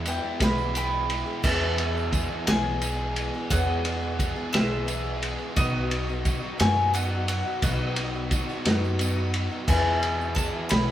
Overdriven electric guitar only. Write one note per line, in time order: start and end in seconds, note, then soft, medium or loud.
0.06 0.43 E3 medium
0.06 0.42 G#3 medium
0.06 0.41 B3 medium
0.06 0.39 E4 medium
0.40 0.73 E3 medium
0.40 0.74 G#3 medium
0.40 0.76 B3 medium
0.40 0.77 E4 medium
0.74 1.12 E3 medium
0.74 1.11 G#3 medium
0.74 1.10 B3 medium
0.74 1.09 E4 medium
1.10 1.44 E3 medium
1.10 1.43 G#3 medium
1.10 1.43 B3 medium
1.10 1.42 E4 medium
1.44 3.50 E2 medium
1.44 2.13 B2 loud
1.44 1.81 E3 loud
1.44 1.80 G#3 medium
1.44 1.79 B3 loud
1.44 1.78 G#4 loud
1.78 2.11 E3 medium
1.78 2.13 G#3 medium
1.78 2.14 B3 medium
1.78 2.15 G#4 medium
2.12 2.49 E3 medium
2.12 2.48 G#3 medium
2.12 2.47 B3 medium
2.12 2.45 G#4 medium
2.47 2.80 E3 medium
2.47 2.81 G#3 medium
2.47 2.83 B3 medium
2.47 2.84 G#4 medium
2.82 3.18 E3 medium
2.82 3.17 G#3 medium
2.82 3.17 B3 medium
2.82 3.15 G#4 medium
3.16 3.51 E3 medium
3.16 3.52 G#3 medium
3.16 3.53 B3 medium
3.16 3.53 G#4 medium
3.51 4.19 E2 medium
3.51 4.20 B2 loud
3.51 3.87 E3 loud
3.51 3.86 G#3 loud
3.51 3.86 B3 loud
3.51 3.83 G#4 loud
3.84 4.18 E3 medium
3.84 4.19 G#3 medium
3.84 4.21 B3 medium
3.84 4.21 G#4 medium
4.19 4.56 E3 medium
4.19 4.54 G#3 medium
4.19 4.54 B3 medium
4.19 4.52 G#4 medium
4.53 4.86 E3 medium
4.53 4.87 G#3 medium
4.53 4.89 B3 medium
4.53 4.90 G#4 medium
4.87 5.24 E3 medium
4.87 5.23 G#3 medium
4.87 5.23 B3 loud
4.87 5.21 G#4 medium
5.22 5.56 E3 medium
5.22 5.56 G#3 medium
5.22 5.58 B3 medium
5.22 5.54 G#4 medium
5.56 7.62 B2 loud
5.56 6.25 F#3 medium
5.56 5.93 B3 medium
5.56 5.92 D#4 loud
5.56 5.90 F#4 loud
5.90 6.26 B3 medium
5.90 6.27 D#4 medium
5.90 6.28 F#4 medium
6.25 6.93 F#3 medium
6.25 6.63 B3 medium
6.25 6.60 D#4 medium
6.25 6.59 F#4 medium
6.60 6.95 B3 medium
6.60 6.95 D#4 medium
6.60 6.96 F#4 medium
6.94 7.63 F#3 medium
6.94 7.31 B3 medium
6.94 7.29 D#4 medium
6.94 7.27 F#4 loud
7.28 7.64 B3 medium
7.28 7.64 D#4 medium
7.28 7.64 F#4 medium
7.62 8.31 B2 loud
7.62 8.29 F#3 medium
7.62 8.00 B3 loud
7.62 7.98 D#4 loud
7.62 7.96 F#4 loud
7.97 8.32 B3 medium
7.97 8.32 D#4 medium
7.97 8.33 F#4 medium
8.31 8.98 F#3 medium
8.31 8.68 B3 medium
8.31 8.66 D#4 medium
8.31 8.64 F#4 loud
8.65 9.00 B3 medium
8.65 9.00 D#4 medium
8.65 9.01 F#4 medium
8.99 9.66 F#3 medium
8.99 9.37 B3 loud
8.99 9.34 D#4 medium
8.99 9.33 F#4 medium
9.34 9.70 B3 medium
9.34 9.67 D#4 medium
9.34 9.66 F#4 medium
9.67 10.91 E2 medium
9.67 10.37 B2 loud
9.67 10.06 E3 loud
9.67 10.05 B3 medium
9.67 10.04 E4 medium
9.67 10.03 G#4 medium
10.03 10.36 E3 medium
10.03 10.37 B3 medium
10.03 10.38 E4 medium
10.03 10.39 G#4 medium
10.36 10.72 E3 medium
10.36 10.72 B3 medium
10.36 10.70 E4 medium
10.36 10.69 G#4 medium
10.70 10.91 E3 medium
10.70 10.91 B3 medium
10.70 10.91 E4 medium
10.70 10.91 G#4 medium